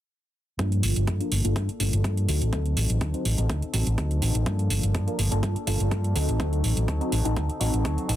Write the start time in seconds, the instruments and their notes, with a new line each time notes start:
0.58 fingered electric bass G2, clean electric guitar F3 A#3 D4 A4, analog polysynth A#3 D4 F4 A4, kick, closed hi-hat
0.72 closed hi-hat
0.83 fingered electric bass G1, open hi-hat
0.96 fingered electric bass G1, closed hi-hat
1.07 fingered electric bass G2, clean electric guitar F3 A#3 D4 A4, kick, closed hi-hat
1.20 analog polysynth A#3 D4 F4 A#4, closed hi-hat
1.31 fingered electric bass G1, clean electric guitar F3 A#3 D4 A4, open hi-hat
1.44 fingered electric bass G1, analog polysynth A#3 D4 F4 A4, clean electric guitar A#3 D4 A4, closed hi-hat
1.56 fingered electric bass G2, kick, closed hi-hat
1.68 clean electric guitar A#3 D4 A4, muted fingered electric bass stroke, closed hi-hat
1.79 fingered electric bass G1, clean electric guitar F3 A#3 D4 A4, analog polysynth A#3 D4 F4 A4, open hi-hat
1.93 fingered electric bass G1, closed hi-hat
2.04 fingered electric bass G2, clean electric guitar F3 A#3 D4, kick, closed hi-hat
2.17 closed hi-hat
2.28 fingered electric bass D2, clean electric guitar F#3 C4 D#4 A4, analog polysynth C4 D#4 F#4 A4, open hi-hat
2.41 fingered electric bass A1, clean electric guitar C4 D#4 A4, closed hi-hat
2.52 clean electric guitar F#3 C4 D#4 A4, analog polysynth C4 D#4 A4, kick, closed hi-hat
2.66 closed hi-hat
2.77 fingered electric bass A1, open hi-hat
2.90 fingered electric bass A1, closed hi-hat
3.01 fingered electric bass D2, clean electric guitar F#3 C4 D#4 A4, kick, closed hi-hat
3.14 analog polysynth C4 D#4 F#4 C5, closed hi-hat
3.25 fingered electric bass A1, clean electric guitar F#3 C4 D#4 A4, open hi-hat
3.38 fingered electric bass A1, analog polysynth C4 D#4 F#4 A4, clean electric guitar C4 D#4 A4, closed hi-hat
3.49 fingered electric bass D2, kick, closed hi-hat
3.62 clean electric guitar C4 D#4 A4, muted fingered electric bass stroke, closed hi-hat
3.73 fingered electric bass A1, clean electric guitar F#3 C4 D#4 A4, analog polysynth C4 D#4 F#4 A4, open hi-hat
3.86 fingered electric bass A1, clean electric guitar C4 D#4 A4, closed hi-hat
3.97 clean electric guitar F#3 C4 D#4 A4, kick, closed hi-hat
4.11 closed hi-hat
4.21 fingered electric bass A1, clean electric guitar F#3 C4 D#4 A4, analog polysynth C4 D#4 F#4 A4, open hi-hat
4.34 fingered electric bass A1, clean electric guitar C4 D#4 A4, closed hi-hat
4.45 fingered electric bass G2, clean electric guitar F3 A#3 D4 A4, analog polysynth A#3 D4 F4 A4, kick, closed hi-hat
4.59 closed hi-hat
4.70 fingered electric bass G1, open hi-hat
4.83 fingered electric bass G1, closed hi-hat
4.94 fingered electric bass G2, clean electric guitar F3 A#3 D4 A4, kick, closed hi-hat
5.07 analog polysynth A#3 D4 F4 A#4, closed hi-hat
5.18 fingered electric bass G1, clean electric guitar F3 A#3 D4 A4, open hi-hat
5.31 fingered electric bass G1, analog polysynth A#3 D4 F4 A4, clean electric guitar A#3 D4 A4, closed hi-hat
5.43 fingered electric bass G2, kick, closed hi-hat
5.55 clean electric guitar A#3 D4 A4, muted fingered electric bass stroke, closed hi-hat
5.66 fingered electric bass G1, clean electric guitar F3 A#3 D4 A4, analog polysynth A#3 D4 F4 A4, open hi-hat
5.80 fingered electric bass G1, closed hi-hat
5.91 fingered electric bass G2, clean electric guitar F3 A#3 D4 A4, kick, closed hi-hat
6.04 closed hi-hat
6.15 fingered electric bass D2, clean electric guitar F#3 C4 D#4 A4, analog polysynth C4 D#4 F#4 A4, open hi-hat
6.28 fingered electric bass A1, clean electric guitar C4 D#4 A4, closed hi-hat
6.39 fingered electric bass D2, clean electric guitar F#3 C4 D#4 A4, analog polysynth C4 D#4 A4, kick, closed hi-hat
6.53 closed hi-hat
6.64 fingered electric bass A1, open hi-hat
6.77 fingered electric bass A1, closed hi-hat
6.88 fingered electric bass D2, clean electric guitar F#3 C4 D#4 A4, kick, closed hi-hat
7.00 analog polysynth C4 D#4 F#4 C5, closed hi-hat
7.12 fingered electric bass A1, clean electric guitar F#3 C4 D#4 A4, open hi-hat
7.25 analog polysynth C4 D#4 F#4 A4, clean electric guitar C4 D#4 A4, closed hi-hat
7.36 fingered electric bass D2, kick, closed hi-hat
7.49 clean electric guitar C4 D#4 A4, muted fingered electric bass stroke, closed hi-hat
7.60 fingered electric bass A1, clean electric guitar F#3 C4 D#4 A4, analog polysynth C4 D#4 F#4 A4, open hi-hat
7.73 fingered electric bass A1, clean electric guitar C4 D#4 A4, closed hi-hat
7.84 fingered electric bass D2, clean electric guitar F#3 C4 D#4 A4, kick, closed hi-hat
7.98 closed hi-hat
8.08 fingered electric bass A1, clean electric guitar F#3 C4 D#4 A4, analog polysynth C4 D#4 F#4 A4, open hi-hat